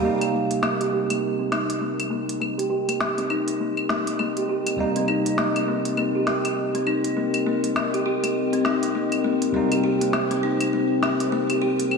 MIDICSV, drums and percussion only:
0, 0, Header, 1, 2, 480
1, 0, Start_track
1, 0, Key_signature, -3, "minor"
1, 0, Tempo, 594059
1, 27, Time_signature, 4, 2, 24, 8
1, 9676, End_track
2, 0, Start_track
2, 0, Title_t, "Drums"
2, 174, Note_on_c, 9, 42, 42
2, 174, Note_on_c, 9, 75, 67
2, 254, Note_off_c, 9, 42, 0
2, 254, Note_off_c, 9, 75, 0
2, 410, Note_on_c, 9, 42, 48
2, 491, Note_off_c, 9, 42, 0
2, 507, Note_on_c, 9, 38, 72
2, 507, Note_on_c, 9, 75, 63
2, 588, Note_off_c, 9, 38, 0
2, 588, Note_off_c, 9, 75, 0
2, 653, Note_on_c, 9, 42, 28
2, 734, Note_off_c, 9, 42, 0
2, 891, Note_on_c, 9, 42, 48
2, 891, Note_on_c, 9, 75, 70
2, 972, Note_off_c, 9, 42, 0
2, 972, Note_off_c, 9, 75, 0
2, 1228, Note_on_c, 9, 38, 69
2, 1228, Note_on_c, 9, 75, 70
2, 1309, Note_off_c, 9, 38, 0
2, 1309, Note_off_c, 9, 75, 0
2, 1372, Note_on_c, 9, 42, 47
2, 1453, Note_off_c, 9, 42, 0
2, 1613, Note_on_c, 9, 42, 39
2, 1613, Note_on_c, 9, 75, 63
2, 1694, Note_off_c, 9, 42, 0
2, 1694, Note_off_c, 9, 75, 0
2, 1853, Note_on_c, 9, 42, 50
2, 1934, Note_off_c, 9, 42, 0
2, 1952, Note_on_c, 9, 75, 61
2, 2033, Note_off_c, 9, 75, 0
2, 2095, Note_on_c, 9, 42, 40
2, 2175, Note_off_c, 9, 42, 0
2, 2333, Note_on_c, 9, 42, 49
2, 2333, Note_on_c, 9, 75, 66
2, 2414, Note_off_c, 9, 42, 0
2, 2414, Note_off_c, 9, 75, 0
2, 2428, Note_on_c, 9, 38, 73
2, 2509, Note_off_c, 9, 38, 0
2, 2570, Note_on_c, 9, 42, 26
2, 2651, Note_off_c, 9, 42, 0
2, 2667, Note_on_c, 9, 75, 65
2, 2748, Note_off_c, 9, 75, 0
2, 2810, Note_on_c, 9, 42, 49
2, 2890, Note_off_c, 9, 42, 0
2, 3049, Note_on_c, 9, 75, 65
2, 3129, Note_off_c, 9, 75, 0
2, 3146, Note_on_c, 9, 38, 65
2, 3227, Note_off_c, 9, 38, 0
2, 3291, Note_on_c, 9, 42, 48
2, 3371, Note_off_c, 9, 42, 0
2, 3387, Note_on_c, 9, 75, 61
2, 3468, Note_off_c, 9, 75, 0
2, 3530, Note_on_c, 9, 42, 37
2, 3610, Note_off_c, 9, 42, 0
2, 3770, Note_on_c, 9, 42, 51
2, 3770, Note_on_c, 9, 75, 67
2, 3851, Note_off_c, 9, 42, 0
2, 3851, Note_off_c, 9, 75, 0
2, 4007, Note_on_c, 9, 42, 39
2, 4088, Note_off_c, 9, 42, 0
2, 4105, Note_on_c, 9, 75, 66
2, 4186, Note_off_c, 9, 75, 0
2, 4251, Note_on_c, 9, 42, 49
2, 4332, Note_off_c, 9, 42, 0
2, 4346, Note_on_c, 9, 38, 72
2, 4427, Note_off_c, 9, 38, 0
2, 4492, Note_on_c, 9, 42, 27
2, 4492, Note_on_c, 9, 75, 67
2, 4573, Note_off_c, 9, 42, 0
2, 4573, Note_off_c, 9, 75, 0
2, 4730, Note_on_c, 9, 42, 47
2, 4811, Note_off_c, 9, 42, 0
2, 4827, Note_on_c, 9, 75, 65
2, 4907, Note_off_c, 9, 75, 0
2, 5065, Note_on_c, 9, 38, 71
2, 5146, Note_off_c, 9, 38, 0
2, 5211, Note_on_c, 9, 42, 46
2, 5211, Note_on_c, 9, 75, 60
2, 5292, Note_off_c, 9, 42, 0
2, 5292, Note_off_c, 9, 75, 0
2, 5453, Note_on_c, 9, 42, 38
2, 5534, Note_off_c, 9, 42, 0
2, 5548, Note_on_c, 9, 75, 63
2, 5629, Note_off_c, 9, 75, 0
2, 5692, Note_on_c, 9, 42, 45
2, 5773, Note_off_c, 9, 42, 0
2, 5931, Note_on_c, 9, 42, 39
2, 5931, Note_on_c, 9, 75, 70
2, 6012, Note_off_c, 9, 42, 0
2, 6012, Note_off_c, 9, 75, 0
2, 6172, Note_on_c, 9, 42, 46
2, 6253, Note_off_c, 9, 42, 0
2, 6270, Note_on_c, 9, 38, 65
2, 6270, Note_on_c, 9, 75, 69
2, 6351, Note_off_c, 9, 38, 0
2, 6351, Note_off_c, 9, 75, 0
2, 6417, Note_on_c, 9, 42, 28
2, 6497, Note_off_c, 9, 42, 0
2, 6655, Note_on_c, 9, 42, 48
2, 6655, Note_on_c, 9, 75, 66
2, 6736, Note_off_c, 9, 42, 0
2, 6736, Note_off_c, 9, 75, 0
2, 6894, Note_on_c, 9, 42, 25
2, 6975, Note_off_c, 9, 42, 0
2, 6988, Note_on_c, 9, 38, 65
2, 6988, Note_on_c, 9, 75, 64
2, 7069, Note_off_c, 9, 38, 0
2, 7069, Note_off_c, 9, 75, 0
2, 7133, Note_on_c, 9, 42, 48
2, 7214, Note_off_c, 9, 42, 0
2, 7369, Note_on_c, 9, 42, 37
2, 7369, Note_on_c, 9, 75, 63
2, 7450, Note_off_c, 9, 42, 0
2, 7450, Note_off_c, 9, 75, 0
2, 7610, Note_on_c, 9, 42, 47
2, 7691, Note_off_c, 9, 42, 0
2, 7851, Note_on_c, 9, 42, 38
2, 7851, Note_on_c, 9, 75, 71
2, 7932, Note_off_c, 9, 42, 0
2, 7932, Note_off_c, 9, 75, 0
2, 8092, Note_on_c, 9, 42, 46
2, 8172, Note_off_c, 9, 42, 0
2, 8187, Note_on_c, 9, 38, 67
2, 8187, Note_on_c, 9, 75, 69
2, 8268, Note_off_c, 9, 38, 0
2, 8268, Note_off_c, 9, 75, 0
2, 8330, Note_on_c, 9, 42, 27
2, 8411, Note_off_c, 9, 42, 0
2, 8569, Note_on_c, 9, 42, 46
2, 8569, Note_on_c, 9, 75, 72
2, 8650, Note_off_c, 9, 42, 0
2, 8650, Note_off_c, 9, 75, 0
2, 8909, Note_on_c, 9, 38, 66
2, 8909, Note_on_c, 9, 75, 70
2, 8990, Note_off_c, 9, 38, 0
2, 8990, Note_off_c, 9, 75, 0
2, 9052, Note_on_c, 9, 42, 43
2, 9133, Note_off_c, 9, 42, 0
2, 9290, Note_on_c, 9, 42, 37
2, 9290, Note_on_c, 9, 75, 68
2, 9371, Note_off_c, 9, 42, 0
2, 9371, Note_off_c, 9, 75, 0
2, 9531, Note_on_c, 9, 42, 50
2, 9612, Note_off_c, 9, 42, 0
2, 9627, Note_on_c, 9, 75, 74
2, 9676, Note_off_c, 9, 75, 0
2, 9676, End_track
0, 0, End_of_file